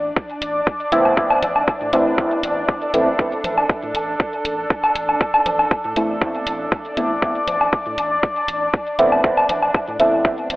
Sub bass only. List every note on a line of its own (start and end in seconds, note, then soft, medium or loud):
0.00 0.11 A1 loud
0.42 0.61 A1 loud
0.92 1.11 A1 loud
1.42 1.62 A1 medium
1.81 1.90 A2 loud
1.93 2.12 A1 loud
2.43 2.63 A1 loud
2.94 3.13 A1 loud
3.44 3.64 A1 medium
3.83 3.92 A2 medium
3.95 4.14 A1 loud
4.45 4.64 A1 loud
4.96 5.15 A1 medium
5.46 5.65 A1 medium
5.85 5.93 A2 medium
5.96 6.16 A1 loud
6.47 6.66 A1 loud
6.97 7.17 A1 loud
7.48 7.67 A1 medium
7.86 7.95 A2 medium
7.98 8.17 A1 loud
8.48 8.68 A1 loud
8.99 9.18 A1 medium
9.49 9.69 A1 medium
9.88 9.97 A2 medium
10.00 10.19 A1 loud
10.50 10.56 A1 loud